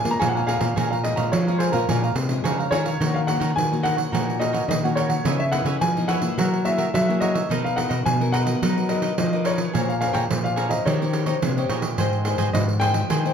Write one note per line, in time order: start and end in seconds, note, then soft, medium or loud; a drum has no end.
0.00 0.18 A#2 medium
0.00 0.12 G#5 loud
0.05 0.43 G#3 medium
0.05 0.18 A#3 medium
0.05 0.44 C#4 medium
0.05 0.44 F4 medium
0.05 pandeiro medium
0.11 0.21 A#5 medium
0.19 0.74 F2 medium
0.19 0.57 A#2 medium
0.19 0.33 G#4 medium
0.19 0.33 C#5 medium
0.19 0.34 F5 medium
0.19 0.30 G#5 medium
0.19 0.34 A#5 medium
0.19 pandeiro medium
0.28 0.39 F#5 medium
0.35 0.46 C#5 soft
0.35 0.47 F5 soft
0.35 0.48 G#5 medium
0.35 0.47 A#5 medium
0.35 pandeiro soft
0.47 0.65 G#3 medium
0.47 0.65 C#4 medium
0.47 0.65 F4 medium
0.47 0.61 G#4 medium
0.47 0.60 C#5 medium
0.47 0.87 F5 medium
0.47 0.59 F5 medium
0.47 0.58 A#5 medium
0.47 pandeiro medium
0.59 0.74 A#2 medium
0.59 0.75 C#5 soft
0.59 0.75 F5 soft
0.59 0.74 A#5 soft
0.59 pandeiro medium
0.76 1.13 A#2 medium
0.76 1.31 A#2 medium
0.76 0.94 G#3 medium
0.76 0.94 C#4 medium
0.76 0.94 F4 medium
0.76 0.89 G#4 medium
0.76 0.90 C#5 medium
0.76 0.90 F5 medium
0.76 0.90 A#5 medium
0.76 pandeiro medium
0.91 1.03 C#5 soft
0.91 0.96 F5 medium
0.91 1.03 F5 soft
0.91 1.03 A#5 soft
0.91 pandeiro soft
1.03 1.31 G#3 medium
1.03 1.31 C#4 medium
1.03 1.32 F4 medium
1.03 1.30 D#5 medium
1.03 muted cavaquinho stroke soft
1.03 pandeiro medium
1.16 1.30 A#2 medium
1.16 1.45 C#5 medium
1.16 1.45 F5 medium
1.16 1.44 A#5 medium
1.16 pandeiro medium
1.32 1.87 F2 medium
1.32 1.69 F3 loud
1.32 1.61 C#5 medium
1.32 pandeiro medium
1.47 1.71 G#3 medium
1.47 1.72 C#4 medium
1.47 1.72 F4 medium
1.47 1.59 C#5 soft
1.47 1.59 F5 soft
1.47 1.60 A#5 soft
1.47 pandeiro soft
1.58 1.73 G#4 medium
1.58 1.74 C5 medium
1.58 1.73 C#5 soft
1.58 1.72 F5 medium
1.58 1.71 A#5 medium
1.58 pandeiro medium
1.72 1.86 A#2 medium
1.72 1.84 G#3 medium
1.72 1.84 C#4 medium
1.72 1.84 F4 medium
1.72 2.68 A#4 medium
1.72 1.88 C#5 medium
1.72 1.87 F5 medium
1.72 1.87 A#5 medium
1.72 pandeiro medium
1.89 2.13 A#2 medium
1.89 2.43 A#2 medium
1.89 2.27 G#3 medium
1.89 2.27 C#4 medium
1.89 2.28 F4 medium
1.89 2.02 G#4 medium
1.89 2.02 C#5 medium
1.89 2.02 F5 medium
1.89 2.02 A#5 medium
1.89 pandeiro medium
2.03 2.14 C#5 soft
2.03 2.15 F5 soft
2.03 2.15 A#5 soft
2.03 pandeiro soft
2.15 2.41 C3 medium
2.15 muted cavaquinho stroke soft
2.15 pandeiro medium
2.29 2.68 G#3 medium
2.29 2.68 C#4 medium
2.29 2.68 F4 medium
2.29 pandeiro medium
2.44 2.99 F2 medium
2.44 2.70 C#3 medium
2.44 2.57 G#4 medium
2.44 2.58 C#5 medium
2.44 2.58 F5 medium
2.44 2.57 A#5 medium
2.44 pandeiro medium
2.58 2.71 C#5 soft
2.58 2.71 F5 soft
2.58 2.72 A#5 soft
2.58 pandeiro soft
2.71 2.98 D#3 medium
2.71 2.89 G#3 medium
2.71 2.90 C#4 medium
2.71 2.90 F4 medium
2.71 2.85 G#4 medium
2.71 3.15 C#5 medium
2.71 2.85 C#5 medium
2.71 2.84 F5 medium
2.71 2.84 A#5 medium
2.71 pandeiro medium
2.85 3.00 C#5 soft
2.85 2.99 F5 soft
2.85 2.99 A#5 soft
2.85 pandeiro medium
3.00 3.37 D#3 medium
3.00 3.55 D#3 medium
3.00 3.25 A#3 soft
3.00 3.25 C#4 medium
3.00 3.27 D#4 medium
3.00 3.26 F#4 medium
3.00 3.27 A#4 medium
3.00 3.28 C#5 medium
3.00 3.28 F#5 medium
3.00 pandeiro medium
3.14 3.19 F5 medium
3.14 pandeiro soft
3.27 3.67 A#3 medium
3.27 3.67 C#4 soft
3.27 3.39 D#4 soft
3.27 3.67 F#4 medium
3.27 3.39 A#4 soft
3.27 3.39 C#5 medium
3.27 3.57 F#5 medium
3.27 3.40 F#5 medium
3.27 pandeiro medium
3.40 3.54 D#3 medium
3.40 3.51 D#4 medium
3.40 3.51 A#4 medium
3.40 3.51 C#5 medium
3.40 3.51 F#5 medium
3.40 pandeiro medium
3.56 4.11 A#2 medium
3.56 4.05 D#3 medium
3.56 3.86 G#5 medium
3.56 pandeiro medium
3.72 4.09 A#3 medium
3.72 4.09 C#4 medium
3.72 4.10 F#4 medium
3.72 pandeiro soft
3.83 3.97 D#4 medium
3.83 3.96 A#4 medium
3.83 3.96 C#5 medium
3.83 4.42 F#5 loud
3.83 3.95 F#5 medium
3.83 pandeiro medium
3.96 4.11 A#4 soft
3.96 4.11 C#5 soft
3.96 4.11 F#5 soft
3.96 pandeiro medium
4.12 4.61 A#2 medium
4.12 4.67 D#3 medium
4.12 4.37 A#3 medium
4.12 4.37 C#4 soft
4.12 4.38 D#4 medium
4.12 4.37 F#4 medium
4.12 4.39 A#4 medium
4.12 4.39 C#5 medium
4.12 4.40 F#5 medium
4.12 pandeiro medium
4.30 pandeiro soft
4.39 4.78 A#3 medium
4.39 4.78 C#4 medium
4.39 4.51 D#4 soft
4.39 4.79 F#4 medium
4.39 4.51 A#4 soft
4.39 4.52 C#5 soft
4.39 4.67 D#5 medium
4.39 4.52 F#5 soft
4.39 pandeiro medium
4.52 4.63 D#4 medium
4.52 4.63 A#4 medium
4.52 4.63 C#5 medium
4.52 4.64 F#5 medium
4.52 pandeiro medium
4.68 5.23 A#2 medium
4.68 5.17 D#3 medium
4.68 4.75 D#5 medium
4.68 pandeiro medium
4.84 5.22 A#3 medium
4.84 5.22 C#4 medium
4.84 5.22 F#4 medium
4.84 4.96 A#4 soft
4.84 4.96 C#5 soft
4.84 4.97 F#5 soft
4.84 pandeiro soft
4.96 5.10 D#4 medium
4.96 5.10 A#4 medium
4.96 5.40 C#5 medium
4.96 5.09 C#5 medium
4.96 5.08 F#5 medium
4.96 pandeiro medium
5.09 5.24 A#4 soft
5.09 5.24 C#5 soft
5.09 5.23 F#5 soft
5.09 pandeiro medium
5.25 5.61 C#3 medium
5.25 5.79 C#3 medium
5.25 5.42 E3 medium
5.25 5.42 B3 medium
5.25 5.42 D#4 medium
5.25 5.51 E4 medium
5.25 5.52 B4 medium
5.25 5.52 C#5 medium
5.25 5.53 E5 medium
5.25 pandeiro medium
5.40 5.53 E5 medium
5.40 pandeiro soft
5.52 5.79 E3 medium
5.52 5.80 B3 medium
5.52 5.80 D#4 medium
5.52 5.64 E4 soft
5.52 5.65 B4 soft
5.52 5.65 C#5 soft
5.52 5.65 E5 medium
5.52 5.79 F#5 medium
5.52 pandeiro medium
5.65 5.78 C#3 medium
5.65 5.76 E4 medium
5.65 5.76 B4 medium
5.65 5.76 C#5 medium
5.65 5.76 E5 medium
5.65 pandeiro medium
5.81 6.35 G#2 medium
5.81 6.29 F3 medium
5.81 6.11 G#5 loud
5.81 pandeiro medium
5.97 6.20 E3 medium
5.97 6.20 B3 medium
5.97 6.20 D#4 medium
5.97 pandeiro soft
6.08 6.22 E4 medium
6.08 6.21 B4 medium
6.08 6.21 C#5 medium
6.08 6.20 E5 medium
6.08 6.61 F#5 loud
6.08 pandeiro medium
6.21 6.60 A#3 medium
6.21 6.61 E4 medium
6.21 6.61 G#4 medium
6.21 6.36 B4 soft
6.21 6.36 C#5 soft
6.21 6.36 E5 soft
6.21 pandeiro medium
6.37 6.91 F#3 medium
6.37 6.86 F#3 medium
6.37 6.63 F#4 medium
6.37 6.64 A#4 medium
6.37 6.65 C#5 medium
6.37 6.66 E5 medium
6.37 pandeiro medium
6.54 pandeiro soft
6.64 6.91 A#3 medium
6.64 6.92 E4 medium
6.64 6.77 F#4 soft
6.64 6.92 G#4 medium
6.64 6.77 A#4 soft
6.64 6.77 C#5 medium
6.64 6.93 E5 medium
6.64 6.78 E5 medium
6.64 pandeiro medium
6.78 6.88 F#4 medium
6.78 6.88 A#4 medium
6.78 6.88 C#5 medium
6.78 6.89 E5 medium
6.78 pandeiro medium
6.94 7.47 C#3 medium
6.94 7.42 F#3 medium
6.94 7.20 E5 medium
6.94 pandeiro medium
7.08 7.46 A#3 medium
7.08 7.46 E4 medium
7.08 7.47 G#4 medium
7.08 7.20 A#4 soft
7.08 7.21 C#5 soft
7.08 7.21 E5 soft
7.08 pandeiro soft
7.20 7.34 F#4 medium
7.20 7.34 A#4 medium
7.20 7.34 C#5 medium
7.20 7.60 D#5 medium
7.20 7.33 E5 medium
7.20 pandeiro medium
7.34 7.49 A#4 soft
7.34 7.49 C#5 soft
7.34 7.48 E5 soft
7.34 pandeiro medium
7.49 7.85 B2 medium
7.49 8.03 B3 medium
7.49 7.75 D#4 medium
7.49 7.74 D#4 medium
7.49 7.74 F#4 medium
7.49 7.74 A#4 medium
7.49 7.76 A#4 medium
7.49 7.76 B4 medium
7.49 7.77 D#5 medium
7.49 pandeiro medium
7.64 7.77 F5 medium
7.64 pandeiro soft
7.76 7.88 D#4 soft
7.76 8.04 D#4 medium
7.76 8.04 F#4 medium
7.76 7.88 A#4 soft
7.76 8.04 A#4 medium
7.76 7.89 B4 medium
7.76 7.89 D#5 medium
7.76 8.03 F#5 medium
7.76 pandeiro medium
7.89 8.03 B2 medium
7.89 8.00 D#4 medium
7.89 8.00 A#4 medium
7.89 8.00 B4 medium
7.89 8.00 D#5 medium
7.89 pandeiro medium
8.06 8.54 B2 medium
8.06 8.59 F#3 medium
8.06 8.32 G#5 medium
8.06 pandeiro medium
8.20 8.44 D#4 medium
8.20 8.44 F#4 medium
8.20 8.44 A#4 medium
8.20 pandeiro soft
8.32 8.47 D#4 medium
8.32 8.47 A#4 medium
8.32 8.46 B4 medium
8.32 8.45 D#5 medium
8.32 8.91 F#5 loud
8.32 pandeiro medium
8.46 8.57 D#4 medium
8.46 8.57 F#4 medium
8.46 8.57 A#4 medium
8.46 8.61 A#4 soft
8.46 8.61 B4 soft
8.46 8.60 D#5 soft
8.46 pandeiro medium
8.62 9.10 F#3 medium
8.62 9.16 B3 medium
8.62 8.79 D#4 medium
8.62 8.88 D#4 medium
8.62 8.79 F#4 medium
8.62 8.79 A#4 medium
8.62 8.89 A#4 medium
8.62 8.89 B4 medium
8.62 8.90 D#5 medium
8.62 pandeiro medium
8.78 pandeiro soft
8.89 9.16 D#4 medium
8.89 9.01 D#4 soft
8.89 9.16 F#4 medium
8.89 9.01 A#4 soft
8.89 9.17 A#4 medium
8.89 9.02 B4 soft
8.89 9.17 D#5 medium
8.89 9.02 D#5 soft
8.89 pandeiro medium
9.02 9.12 D#4 medium
9.02 9.13 A#4 medium
9.02 9.13 B4 medium
9.02 9.13 D#5 medium
9.02 pandeiro medium
9.18 9.66 F3 medium
9.18 9.47 D#5 medium
9.18 pandeiro medium
9.33 9.70 D#4 medium
9.33 9.71 A#4 medium
9.33 9.44 A#4 soft
9.33 9.44 B4 soft
9.33 9.44 D#5 medium
9.33 pandeiro soft
9.44 9.58 D#4 medium
9.44 9.58 A#4 medium
9.44 9.57 B4 medium
9.44 9.90 C#5 medium
9.44 9.57 D#5 medium
9.44 pandeiro medium
9.58 9.73 A#4 soft
9.58 9.72 B4 soft
9.58 9.72 D#5 soft
9.58 pandeiro medium
9.73 10.10 A#2 medium
9.73 10.28 A#3 medium
9.73 9.91 C#4 medium
9.73 9.99 G#4 medium
9.73 9.91 G#4 medium
9.73 9.91 C5 medium
9.73 10.00 C#5 medium
9.73 10.00 F5 medium
9.73 10.01 A#5 medium
9.73 pandeiro medium
9.89 9.94 F5 medium
9.89 pandeiro soft
10.00 10.54 C#4 medium
10.00 10.12 G#4 soft
10.00 10.54 G#4 medium
10.00 10.54 C5 medium
10.00 10.13 C#5 soft
10.00 10.16 F5 medium
10.00 10.13 F5 soft
10.00 10.13 A#5 soft
10.00 pandeiro medium
10.13 10.27 A#2 medium
10.13 10.24 G#4 medium
10.13 10.24 C#5 medium
10.13 10.24 F5 medium
10.13 10.20 G5 medium
10.13 10.25 A#5 medium
10.13 pandeiro medium
10.30 10.78 A#2 medium
10.30 10.84 F3 medium
10.30 pandeiro medium
10.44 10.73 F5 medium
10.44 pandeiro soft
10.56 10.84 C#4 medium
10.56 10.70 G#4 medium
10.56 10.84 G#4 medium
10.56 10.84 C5 medium
10.56 10.70 C#5 medium
10.56 10.69 F5 medium
10.56 10.68 A#5 medium
10.56 pandeiro medium
10.69 10.85 C#5 soft
10.69 10.86 D#5 medium
10.69 10.84 F5 soft
10.69 10.84 A#5 soft
10.69 pandeiro medium
10.85 11.40 D#3 medium
10.85 11.34 D#3 medium
10.85 10.95 C#4 medium
10.85 11.11 D#4 medium
10.85 11.12 G4 medium
10.85 10.95 G4 medium
10.85 10.95 C5 medium
10.85 11.66 C#5 medium
10.85 11.13 C#5 medium
10.85 11.13 D#5 medium
10.85 pandeiro medium
11.02 11.25 C#4 medium
11.02 11.25 G4 medium
11.02 11.25 C5 medium
11.02 pandeiro soft
11.13 11.24 D#4 soft
11.13 11.25 G4 soft
11.13 11.25 C#5 soft
11.13 11.25 D#5 medium
11.13 pandeiro medium
11.25 11.51 C#4 medium
11.25 11.36 D#4 medium
11.25 11.36 G4 medium
11.25 11.51 G4 medium
11.25 11.52 C5 medium
11.25 11.37 C#5 medium
11.25 11.37 D#5 medium
11.25 pandeiro medium
11.42 11.96 A#2 medium
11.42 11.68 C3 medium
11.42 pandeiro medium
11.57 11.95 C#4 medium
11.57 11.95 G4 medium
11.57 11.69 G4 soft
11.57 11.95 C5 medium
11.57 11.69 C#5 soft
11.57 11.70 D#5 soft
11.57 pandeiro soft
11.69 11.95 A#2 medium
11.69 11.83 D#4 medium
11.69 11.82 G4 medium
11.69 11.82 C#5 medium
11.69 11.81 D#5 medium
11.69 pandeiro medium
11.82 11.97 G4 soft
11.82 11.97 C#5 soft
11.82 11.96 D#5 soft
11.82 pandeiro medium
11.98 12.34 G#2 medium
11.98 12.52 G#3 medium
11.98 12.15 D#4 soft
11.98 12.16 G4 medium
11.98 12.23 G#4 medium
11.98 12.24 C5 medium
11.98 12.16 C5 medium
11.98 12.24 D#5 medium
11.98 12.25 G5 medium
11.98 pandeiro medium
12.13 pandeiro soft
12.25 12.78 D#4 medium
12.25 12.78 G4 medium
12.25 12.37 G#4 soft
12.25 12.37 C5 soft
12.25 12.78 C5 medium
12.25 12.37 D#5 medium
12.25 12.38 G5 soft
12.25 pandeiro medium
12.38 12.51 G#2 medium
12.38 12.48 G#4 medium
12.38 12.48 C5 medium
12.38 12.49 D#5 medium
12.38 12.49 G5 medium
12.38 pandeiro medium
12.53 13.02 G#2 loud
12.53 13.08 D#3 medium
12.53 12.60 D#5 medium
12.53 pandeiro medium
12.69 pandeiro soft
12.80 13.08 D#4 medium
12.80 13.09 G4 medium
12.80 12.95 G#4 medium
12.80 12.94 C5 medium
12.80 13.09 C5 medium
12.80 12.94 D#5 medium
12.80 13.34 G5 loud
12.80 12.92 G5 medium
12.80 pandeiro medium
12.94 13.09 C5 soft
12.94 13.09 D#5 soft
12.94 13.08 G5 soft
12.94 pandeiro medium
13.10 13.34 D#3 medium
13.10 13.34 G#3 medium
13.10 13.34 G#4 medium
13.10 13.34 C5 medium
13.10 13.34 D#5 medium
13.10 13.34 G5 medium
13.10 pandeiro medium
13.25 13.34 D#4 medium
13.25 13.34 G4 medium
13.25 13.34 C5 medium
13.25 pandeiro soft